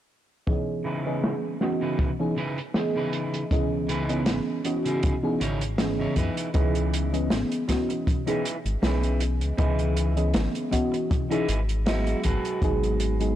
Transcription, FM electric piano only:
0.47 E3 B3 C#4 D#4 G#4
1.05 E3 B3 C#4 G#4 D#5
1.60 E3 B3 C#4 F#4 D#5
2.19 E3 B3 C#4 D#4 G#4
2.74 E3 B3 C#4 G#4 D#5
3.51 E3 B3 C#4 G#4 D#5
4.09 E3 B3 C#4 G#4 D#5
4.65 E3 B3 C#4 F#4 D#5
5.23 E3 B3 C#4 D#4 G#4
5.78 E3 B3 C#4 G#4 D#5
6.53 E3 B3 C#4 G#4 D#5
7.12 E3 B3 C#4 G#4 D#5
7.67 E3 B3 C#4 F#4 D#5
8.26 E3 B3 C#4 D#4 G#4
8.82 E3 B3 C#4 G#4 D#5
9.58 E3 B3 C#4 G#4 D#5
10.16 E3 B3 C#4 G#4 D#5
10.71 E3 B3 C#4 F#4 D#5
11.30 E3 B3 C#4 D#4 G#4
11.86 F#3 G#3 B3 G#4 D#5
12.62 F#3 G#3 B3 D#4 G#4
13.20 F#3 G#3 B3 D#4 G#4

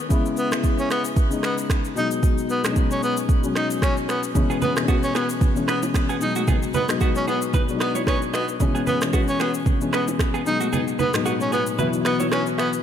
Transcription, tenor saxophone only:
0.38 B3
0.79 C#4
0.91 B3
1.44 B3
1.97 D#4
2.50 B3
2.91 C#4
3.03 B3
3.56 D#4
3.83 C#4
4.09 B3
4.62 B3
5.03 C#4
5.15 B3
5.69 B3
6.22 D#4
6.75 B3
7.16 C#4
7.28 B3
7.81 B3
8.08 C#4
8.35 B3
8.88 B3
9.29 C#4
9.41 B3
9.94 B3
10.47 D#4
11.00 B3
11.41 C#4
11.53 B3
12.06 B3
12.32 C#4
12.59 B3

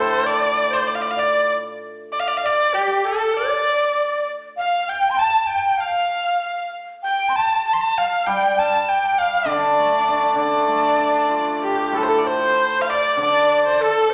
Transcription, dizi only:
Already playing: A4
0.25 D5
0.70 C5
1.17 D5
2.43 D5
2.73 G4
3.05 A4
3.35 D5
4.57 F5
4.88 G5
5.10 C6
5.17 A5
5.47 G5
5.71 G5
5.78 F5
6.41 F5
7.03 G5
7.29 C6
7.36 A5
7.66 A5
7.81 A5
7.99 F5
8.29 G5
8.58 A5
8.89 G5
9.19 F5
9.48 D5
10.39 D5
11.63 G4
11.95 A4
12.08 A4
12.25 C5
12.88 D5
13.19 D5
13.81 A4
14.10 C5

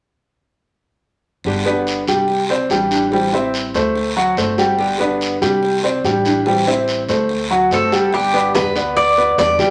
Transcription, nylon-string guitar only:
1.45 B2 D3 G3 B3 G4
1.66 D3 G3 B3 G4
2.30 muted nylon-string guitar stroke
2.70 E3 G3 D4 E4
2.91 E3 G3 D4 E4
3.11 E3 G3 C4 E4
3.32 G3 C4 E4
3.95 muted nylon-string guitar stroke
4.37 D3 A3 C4 F#4
4.58 A3 C4 F#4
4.78 B2 D3 G3 B3 G4
4.99 D3 G3 B3 G4
5.62 muted nylon-string guitar stroke
6.04 E3 G3 D4 E4
6.26 E3 G3 D4 E4
6.46 E3 G3 C4 E4
6.67 G3 C4 E4
7.30 muted nylon-string guitar stroke
7.72 D3 A3 C4 F#4
7.92 A3 C4 F#4
8.13 B2 D3 G3 B3 G4
8.54 B2 D3 G3 B3 G4
8.75 G3 B3 G4
8.96 muted nylon-string guitar stroke
9.38 B2 D3 G3 B3 G4
9.59 G3 B3 G4

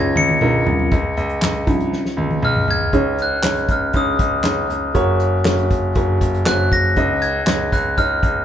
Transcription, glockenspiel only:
Already playing: G#6
0.17 C#7
2.45 F6
2.71 G#6
3.22 F#6
3.71 F6
3.97 D#6
6.47 F#6
6.73 A#6
7.22 G#6
7.73 F#6
7.98 F6

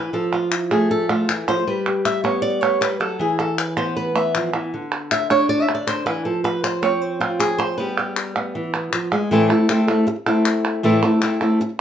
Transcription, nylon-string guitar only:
Already playing: E3 B4
0.13 F3 A4
0.33 F4
0.52 E4
0.71 A3 G#4
0.91 A4
1.09 A3 F4
1.29 E3
1.48 F3 C5
1.67 G3 B4
1.88 G4
2.05 E5
2.24 B3 C#5
2.42 D5
2.62 B3 C#5
2.81 G3 B4
3.00 F#3 A4
3.19 E3 G#4
3.39 A4
3.58 B4
3.77 B3 C5
3.96 B4
4.15 B3 E5
4.35 F3
4.54 E3
4.74 D3
5.12 E5
5.30 D4 C#5
5.49 D5
5.62 E5
5.69 D4
5.75 D5
5.87 D3 C5
6.06 E3 B4
6.25 F3 A4
6.44 B4
6.64 C5
6.83 C4 C#5
7.01 C5
7.20 C4 F4
7.40 G#4
7.58 C5
7.78 G3 B3 G4 B4
7.99 G4
8.37 B3
8.55 E3
8.75 B3
8.93 F3
9.12 G#3
9.31 A2 E3 A3 C4 E4 A4
9.50 A3 C4 E4 A4
9.69 A3 C4 E4 A4
9.88 A3 C4 E4 A4
10.07 muted nylon-string guitar stroke
10.26 A3 C4 E4 A4
10.83 A2 E3 A3 C4 E4 A4
11.03 A3 C4 E4 A4
11.22 A3 C4 E4 A4
11.41 A3 C4 E4 A4
11.61 muted nylon-string guitar stroke

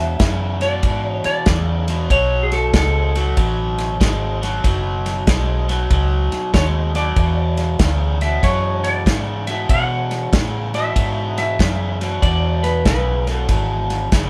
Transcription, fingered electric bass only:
Already playing: E2
0.20 F#2
0.84 G#2
1.25 muted fingered electric bass stroke
1.47 E2
2.11 B1
2.74 C#2
3.38 A1
4.01 G#1
4.64 F#1
5.28 B1
5.91 C#2
6.32 muted fingered electric bass stroke
6.53 D#2
7.17 E2
7.80 D2
8.43 F#2
9.07 G#2
9.70 B2
10.32 A2
10.96 G#2
11.60 F#2
12.23 E2
12.86 B1
13.49 G#1
14.12 F#1

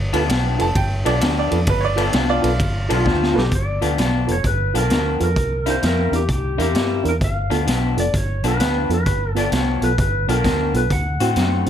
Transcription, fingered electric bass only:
Already playing: G1
0.13 D2
0.29 B1
0.60 F1
0.75 G1
1.06 B1
1.22 D2
1.52 F2
1.67 G1
2.14 C2
2.44 B1
2.60 G1
2.91 B1
3.06 D2
3.36 B1
3.52 G1
3.83 D2
3.98 B1
4.28 F1
4.44 G1
4.74 B1
4.91 D2
5.21 F2
5.36 C2
5.83 F2
6.12 E2
6.29 C2
6.59 E2
6.74 G2
7.05 E2
7.21 G1
7.51 D2
7.67 B1
7.97 F1
8.14 G1
8.43 B1
8.59 D2
8.89 F2
9.06 G1
9.52 C2
9.82 B1
9.98 G1
10.28 B1
10.45 D2
10.74 B1
10.90 D2
11.20 A2
11.36 F#2

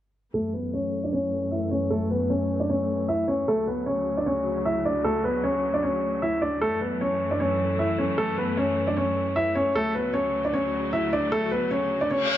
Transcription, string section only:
0.34 F#2 E3 A3
3.48 D2 C#3 F#3
6.61 F#2 E3 A3
9.75 D2 C#3 F#3

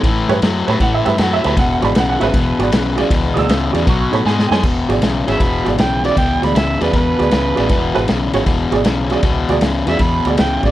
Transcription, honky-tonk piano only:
0.29 G4 B4 C#5
0.66 G4 B4 C#5 B5
0.81 F#5
0.94 E5
1.05 G4 B4 E5
1.09 B5
1.21 F#5
1.33 E5
1.43 G4 B4 E5 B5
1.59 F#5
1.72 F#5
1.82 F#4 G#4 D5 B5
1.98 F#5
2.10 F#5
2.19 F#4 G#4 B4 E5
2.59 F#4 G#4 D5
2.97 F#4 G#4 D5
3.34 F#4 G#4 D5 D#6
3.38 E6
3.72 F#4 G#4 D5
3.90 C#6
4.12 D#4 A4 C#5 B5
4.26 G#5
4.48 D#4 A4 G5
4.52 C#5 G#5
4.89 F#4 G#4 D5
5.27 F#4 G#4 C#5
5.65 F#4 G#4 D5
6.04 F#4 G#4 D5
6.42 F#4 G#4 D5
6.81 F#4 G#4 D5
7.18 F#4 G#4 D5
7.56 F#4 G#4 D5
7.94 F#4 G#4 B4
8.34 F#4 G#4 C#5
8.71 F#4 G#4 D5
9.11 F#4 G#4 D5
9.49 F#4 G#4 D5
9.88 F#4 G#4 D5
10.26 F#4 G#4 D5
10.63 F#4 G#4 D5

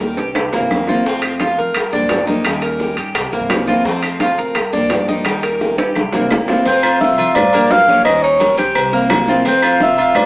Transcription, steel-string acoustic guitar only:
0.01 D#3 G3 C#4 G4
0.36 muted steel-string acoustic guitar stroke
0.53 E3 A#3 C4 E4
0.72 E3 A#3 C4 E4
0.89 E3 A#3 C4 E4
1.05 C3 F3 A3 C4 F4
1.41 F3 A3 C4 F4
1.76 muted steel-string acoustic guitar stroke
1.93 F3 A#3 D4 G4
2.10 F3 A#3 D4 G4
2.27 F3 A#3 D4 G4
2.45 D#3 G3 C#4 G4
2.80 D#3 G3 C#4 G4
3.15 muted steel-string acoustic guitar stroke
3.32 E3 A#3 C4 E4
3.49 E3 A#3 C4 E4
3.67 E3 A#3 C4 E4
3.86 C3 F3 A3 C4 F4
4.20 F3 A3 C4 F4
4.55 muted steel-string acoustic guitar stroke
4.73 F3 A#3 D4 G4
4.91 F3 A#3 D4 G4
5.08 F3 A#3 D4 G4
5.25 D#3 G3 C#4 G4
5.61 D#3 G3 C#4 G4
5.97 muted steel-string acoustic guitar stroke
6.13 E3 A#3 C4 E4
6.31 E3 A#3 C4 E4
6.49 E3 A#3 C4 E4
6.66 C3 F3 A3 C4 F4
7.02 F3 A3 C4 F4
7.37 muted steel-string acoustic guitar stroke
7.54 F3 A#3 D4 G4
7.72 F3 A#3 D4 G4
7.88 F3 A#3 D4 G4
8.06 D#3 G3 C#4 G4
8.40 D#3 G3 C#4 G4
8.76 muted steel-string acoustic guitar stroke
8.92 E3 A#3 C4 E4
9.09 E3 A#3 C4 E4
9.28 E3 A#3 C4 E4
9.45 C3 F3 A3 C4 F4
9.80 F3 A3 C4 F4
10.15 muted steel-string acoustic guitar stroke

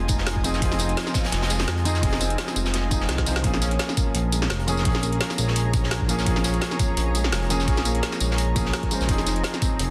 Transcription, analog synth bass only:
Already playing: F1
0.62 F1
1.33 F1
1.68 F2
2.03 F1
2.56 F1
3.09 C2
3.44 A#1
4.15 A#1
4.50 F1
4.85 A#1
5.38 A#1
6.27 A#1
6.97 A#1
7.33 F1
7.68 A#1
8.21 A#1
8.56 A#1
9.01 A#1
9.09 F1
9.80 F1

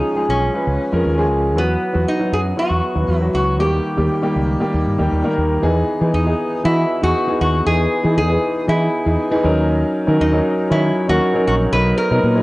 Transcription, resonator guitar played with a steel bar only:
Already playing: D#4
0.30 C#4
1.58 B3
2.08 D#4
2.33 G#4
2.59 F#4
3.16 E4
3.35 F#4
3.60 G4
6.14 D#4
6.65 E4
7.03 F#4
7.41 F#4
7.67 G#4
8.18 G#4
8.69 E4
10.21 D#4
10.72 E4
11.09 F#4
11.47 F#4
11.73 B4
11.98 A#4

